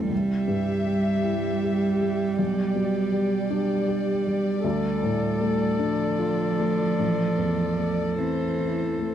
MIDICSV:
0, 0, Header, 1, 5, 480
1, 0, Start_track
1, 0, Key_signature, 0, "major"
1, 0, Tempo, 755668
1, 74, Time_signature, 6, 3, 24, 8
1, 3432, Tempo, 797872
1, 5684, End_track
2, 0, Start_track
2, 0, Title_t, "Violin section"
2, 0, Program_c, 0, 48
2, 73, Note_on_c, 0, 76, 39
2, 1494, Note_off_c, 0, 76, 0
2, 1520, Note_on_c, 0, 74, 44
2, 5079, Note_off_c, 0, 74, 0
2, 5105, Note_on_c, 0, 72, 36
2, 5684, Note_off_c, 0, 72, 0
2, 5684, End_track
3, 0, Start_track
3, 0, Title_t, "Viola"
3, 0, Program_c, 1, 41
3, 68, Note_on_c, 1, 67, 42
3, 2920, Note_off_c, 1, 67, 0
3, 2950, Note_on_c, 1, 69, 62
3, 5684, Note_off_c, 1, 69, 0
3, 5684, End_track
4, 0, Start_track
4, 0, Title_t, "Felt piano"
4, 0, Program_c, 2, 0
4, 0, Control_c, 2, 64, 127
4, 0, Note_on_c, 2, 38, 41
4, 0, Note_on_c, 2, 40, 43
4, 0, Note_on_c, 2, 57, 42
4, 0, Note_on_c, 2, 64, 47
4, 59, Note_on_c, 2, 36, 36
4, 71, Note_off_c, 2, 57, 0
4, 85, Control_c, 2, 64, 0
4, 86, Note_off_c, 2, 38, 0
4, 86, Note_off_c, 2, 64, 0
4, 89, Note_off_c, 2, 40, 0
4, 183, Control_c, 2, 64, 127
4, 302, Note_on_c, 2, 43, 29
4, 549, Note_on_c, 2, 55, 28
4, 699, Note_off_c, 2, 43, 0
4, 787, Note_on_c, 2, 64, 34
4, 941, Note_off_c, 2, 55, 0
4, 1040, Note_on_c, 2, 67, 33
4, 1178, Note_off_c, 2, 64, 0
4, 1276, Note_on_c, 2, 55, 35
4, 1424, Note_off_c, 2, 67, 0
4, 1487, Note_off_c, 2, 36, 0
4, 1515, Note_on_c, 2, 35, 48
4, 1517, Note_off_c, 2, 55, 0
4, 1532, Control_c, 2, 64, 0
4, 1628, Control_c, 2, 64, 127
4, 1748, Note_on_c, 2, 47, 36
4, 1984, Note_on_c, 2, 55, 38
4, 2133, Note_off_c, 2, 47, 0
4, 2226, Note_on_c, 2, 62, 43
4, 2370, Note_off_c, 2, 55, 0
4, 2463, Note_on_c, 2, 67, 42
4, 2610, Note_off_c, 2, 62, 0
4, 2712, Note_on_c, 2, 55, 46
4, 2849, Note_off_c, 2, 67, 0
4, 2921, Note_off_c, 2, 35, 0
4, 2948, Note_on_c, 2, 38, 58
4, 2951, Note_off_c, 2, 55, 0
4, 2961, Control_c, 2, 64, 0
4, 3053, Control_c, 2, 64, 127
4, 3197, Note_on_c, 2, 45, 44
4, 3436, Note_on_c, 2, 57, 41
4, 3578, Note_off_c, 2, 45, 0
4, 3666, Note_on_c, 2, 62, 45
4, 3811, Note_off_c, 2, 57, 0
4, 3905, Note_on_c, 2, 65, 43
4, 4046, Note_off_c, 2, 62, 0
4, 4143, Note_on_c, 2, 57, 37
4, 4286, Note_off_c, 2, 65, 0
4, 4357, Note_off_c, 2, 38, 0
4, 4382, Note_off_c, 2, 57, 0
4, 4385, Note_on_c, 2, 33, 40
4, 4392, Control_c, 2, 64, 0
4, 4495, Control_c, 2, 64, 127
4, 4620, Note_on_c, 2, 40, 30
4, 4858, Note_on_c, 2, 57, 30
4, 5006, Note_off_c, 2, 40, 0
4, 5100, Note_on_c, 2, 60, 32
4, 5247, Note_off_c, 2, 57, 0
4, 5348, Note_on_c, 2, 64, 32
4, 5493, Note_off_c, 2, 60, 0
4, 5591, Note_on_c, 2, 57, 33
4, 5684, Note_off_c, 2, 33, 0
4, 5684, Note_off_c, 2, 57, 0
4, 5684, Note_off_c, 2, 64, 0
4, 5684, End_track
5, 0, Start_track
5, 0, Title_t, "Cello"
5, 0, Program_c, 3, 42
5, 0, Note_on_c, 3, 60, 54
5, 69, Note_off_c, 3, 60, 0
5, 73, Note_on_c, 3, 55, 40
5, 3671, Note_on_c, 3, 53, 56
5, 3680, Note_off_c, 3, 55, 0
5, 5104, Note_on_c, 3, 52, 40
5, 5113, Note_off_c, 3, 53, 0
5, 5684, Note_off_c, 3, 52, 0
5, 5684, End_track
0, 0, End_of_file